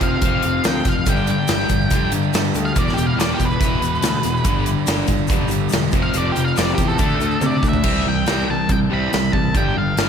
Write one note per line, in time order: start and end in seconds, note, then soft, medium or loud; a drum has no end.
0.01 0.16 F1 medium
0.01 0.86 F2 medium
0.01 0.85 C3 medium
0.01 0.21 F3 medium
0.01 0.22 C4 medium
0.01 0.64 F5 medium
0.01 kick medium
0.01 closed hi-hat medium
0.22 0.37 F1 medium
0.22 0.42 F3 medium
0.22 0.43 C4 medium
0.22 0.43 F4 loud
0.22 kick loud
0.22 closed hi-hat medium
0.43 0.60 F1 medium
0.43 0.63 F3 medium
0.43 0.64 C4 medium
0.43 closed hi-hat medium
0.64 0.80 D2 medium
0.64 0.84 F3 medium
0.64 0.84 C4 medium
0.64 0.87 G5 medium
0.64 snare loud
0.64 closed hi-hat medium
0.85 1.00 F1 medium
0.85 1.05 F3 medium
0.85 1.05 C4 medium
0.85 1.08 F5 medium
0.85 kick medium
0.85 snare soft
0.85 closed hi-hat medium
1.06 1.37 G1 medium
1.06 1.27 G2 medium
1.06 1.27 D3 medium
1.06 1.27 G3 medium
1.06 1.29 G5 medium
1.06 kick loud
1.06 closed hi-hat medium
1.06 shaker medium
1.17 shaker soft
1.27 1.47 G2 medium
1.27 1.47 D3 medium
1.27 2.12 G5 medium
1.27 closed hi-hat medium
1.27 shaker medium
1.48 1.64 G1 medium
1.48 1.68 G2 medium
1.48 1.69 D3 medium
1.48 1.69 G3 medium
1.48 snare loud
1.48 closed hi-hat loud
1.48 shaker medium
1.69 1.85 G1 medium
1.69 1.89 G2 medium
1.69 1.89 D3 medium
1.69 kick medium
1.69 closed hi-hat medium
1.69 shaker medium
1.81 shaker soft
1.91 2.06 F1 medium
1.91 2.11 G2 medium
1.91 2.11 D3 medium
1.91 2.11 G3 medium
1.91 kick loud
1.91 closed hi-hat medium
1.91 shaker medium
2.12 2.27 G1 medium
2.12 2.32 G2 medium
2.12 2.32 D3 medium
2.12 closed hi-hat medium
2.12 shaker medium
2.22 shaker soft
2.33 2.53 G2 medium
2.33 2.49 G2 medium
2.33 2.53 D3 medium
2.33 snare loud
2.33 closed hi-hat medium
2.33 shaker medium
2.54 2.70 D2 medium
2.54 2.74 G2 medium
2.54 2.75 D3 medium
2.54 closed hi-hat medium
2.54 shaker medium
2.65 2.78 F5 medium
2.65 shaker soft
2.76 2.91 E1 medium
2.76 2.96 E2 medium
2.76 2.96 B2 medium
2.76 2.96 E3 medium
2.76 2.92 D5 medium
2.76 kick loud
2.76 closed hi-hat medium
2.76 shaker medium
2.88 snare soft
2.88 shaker soft
2.94 3.11 E1 medium
2.94 3.16 E2 medium
2.94 3.16 B2 medium
2.94 3.06 G4 medium
2.94 shaker medium
2.98 closed hi-hat medium
3.07 3.19 F5 loud
3.17 3.32 E1 medium
3.17 3.38 E2 medium
3.17 3.38 B2 medium
3.17 3.38 E3 loud
3.17 3.33 D5 medium
3.17 closed hi-hat medium
3.17 shaker medium
3.21 snare loud
3.34 3.47 G4 medium
3.39 3.55 E1 medium
3.39 3.57 E2 medium
3.39 3.58 B2 medium
3.39 kick medium
3.39 closed hi-hat medium
3.39 shaker medium
3.45 4.69 B4 loud
3.51 shaker soft
3.59 3.76 E1 medium
3.59 3.79 E2 medium
3.59 3.80 B2 medium
3.59 3.80 E3 loud
3.59 kick loud
3.59 closed hi-hat medium
3.63 4.46 E3 medium
3.63 shaker medium
3.81 3.96 E1 medium
3.81 4.00 E2 medium
3.81 4.01 B2 medium
3.81 closed hi-hat medium
3.81 shaker medium
3.95 shaker soft
4.02 4.17 D2 medium
4.02 4.22 E2 medium
4.02 4.22 B2 medium
4.02 snare loud
4.02 closed hi-hat medium
4.02 shaker loud
4.23 4.39 E1 medium
4.23 4.43 E2 medium
4.23 4.43 B2 medium
4.23 closed hi-hat medium
4.23 shaker medium
4.37 shaker soft
4.44 4.74 G1 medium
4.44 4.65 G2 medium
4.44 4.65 D3 medium
4.44 4.65 G3 medium
4.44 kick loud
4.44 closed hi-hat medium
4.44 shaker loud
4.66 4.85 G2 medium
4.66 4.86 D3 medium
4.66 closed hi-hat medium
4.66 shaker medium
4.87 5.02 G1 medium
4.87 5.07 G2 medium
4.87 5.07 D3 medium
4.87 5.07 G3 medium
4.87 snare loud
4.87 closed hi-hat medium
4.87 shaker loud
5.07 5.23 G1 medium
5.07 5.28 G2 medium
5.07 5.28 D3 medium
5.07 kick medium
5.07 closed hi-hat medium
5.07 shaker medium
5.18 shaker soft
5.27 5.45 F1 medium
5.27 5.49 G2 medium
5.27 5.50 D3 medium
5.27 5.50 G3 medium
5.27 kick loud
5.27 closed hi-hat medium
5.27 shaker medium
5.48 5.65 G1 medium
5.48 5.70 G2 medium
5.48 5.70 D3 medium
5.48 closed hi-hat medium
5.48 shaker medium
5.58 shaker soft
5.69 5.91 G2 medium
5.69 5.91 D3 medium
5.69 closed hi-hat medium
5.69 shaker loud
5.73 5.88 E1 medium
5.73 snare loud
5.91 6.08 F1 medium
5.91 6.13 F2 medium
5.91 6.13 C3 medium
5.91 6.13 F3 loud
5.91 kick loud
5.91 closed hi-hat medium
5.91 shaker medium
6.02 6.15 F5 loud
6.02 shaker soft
6.14 6.30 F1 medium
6.14 6.34 F2 medium
6.14 6.35 C3 medium
6.14 6.35 F3 loud
6.14 6.30 D5 medium
6.14 closed hi-hat medium
6.14 shaker medium
6.32 6.55 F2 medium
6.32 6.44 G4 medium
6.32 shaker medium
6.36 6.51 F1 medium
6.36 6.55 C3 medium
6.36 closed hi-hat medium
6.45 6.57 F5 medium
6.45 shaker soft
6.56 6.72 F1 loud
6.56 6.76 F2 medium
6.56 6.77 C3 medium
6.56 6.77 F3 loud
6.56 6.71 D5 loud
6.56 snare loud
6.56 closed hi-hat medium
6.56 shaker medium
6.69 shaker soft
6.75 6.93 E2 medium
6.75 6.97 F2 medium
6.75 6.97 C3 medium
6.75 6.97 F3 medium
6.75 6.88 G4 loud
6.75 kick medium
6.75 closed hi-hat medium
6.75 shaker medium
6.88 7.82 A4 loud
6.88 shaker soft
6.98 7.14 D2 medium
6.98 7.19 D3 medium
6.98 7.19 A3 medium
6.98 7.19 D4 loud
6.98 kick loud
6.98 closed hi-hat medium
6.98 shaker medium
7.09 shaker soft
7.20 7.35 D2 medium
7.20 7.39 D3 medium
7.20 7.40 A3 medium
7.20 closed hi-hat medium
7.20 shaker medium
7.31 shaker soft
7.41 7.56 C3 medium
7.41 7.61 D3 medium
7.41 7.61 A3 medium
7.41 high tom medium
7.41 shaker loud
7.46 7.66 D5 medium
7.62 7.85 D2 medium
7.62 7.82 D3 medium
7.62 7.82 A3 medium
7.62 kick medium
7.62 shaker medium
7.69 8.08 E5 medium
7.73 floor tom medium
7.73 shaker soft
7.84 8.00 C2 medium
7.84 8.04 C3 medium
7.84 8.04 E3 medium
7.84 8.05 G3 medium
7.84 8.05 C4 medium
7.84 kick loud
7.84 crash medium
8.06 8.21 C2 medium
8.06 8.25 C3 medium
8.06 8.25 E3 medium
8.06 8.25 G3 medium
8.06 8.47 G5 medium
8.27 8.43 C2 medium
8.27 8.47 C3 medium
8.27 8.47 E3 medium
8.27 8.47 G3 loud
8.27 8.47 C4 medium
8.27 snare loud
8.27 closed hi-hat medium
8.48 8.65 C2 medium
8.48 8.67 C3 medium
8.48 8.67 E3 medium
8.48 8.68 G3 medium
8.48 8.71 A5 medium
8.69 8.85 C2 medium
8.69 8.88 C3 medium
8.69 8.88 E3 medium
8.69 8.89 G3 medium
8.69 8.77 G5 medium
8.69 kick loud
8.69 closed hi-hat medium
8.89 9.07 C2 medium
8.89 9.10 C3 medium
8.89 9.09 E3 medium
8.89 9.10 G3 medium
8.89 9.11 C4 medium
8.93 9.31 B5 medium
9.11 9.29 C2 medium
9.11 9.30 C3 medium
9.11 9.30 E3 medium
9.11 9.32 G3 medium
9.11 snare loud
9.11 closed hi-hat medium
9.32 9.49 C2 medium
9.32 9.51 C3 medium
9.32 9.51 E3 medium
9.32 9.53 G3 medium
9.32 9.55 A5 medium
9.32 kick medium
9.54 9.70 G1 medium
9.54 9.74 G2 medium
9.54 9.74 D3 medium
9.54 9.74 G3 loud
9.54 9.77 G5 medium
9.54 kick loud
9.54 closed hi-hat medium
9.76 9.92 G1 medium
9.76 9.95 G2 medium
9.76 9.95 D3 medium
9.76 10.09 F5 medium
9.96 10.09 G1 medium
9.96 10.09 G2 medium
9.96 10.09 D3 medium
9.96 10.09 G3 medium
9.96 snare loud
9.96 closed hi-hat medium